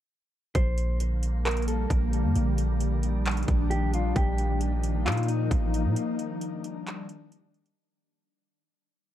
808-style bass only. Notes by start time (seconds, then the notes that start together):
0.55 A#1
1.90 A#1
2.24 F2
2.36 A#1
3.48 A#1
4.16 A#1
5.06 A#2
5.51 A1
5.85 A#2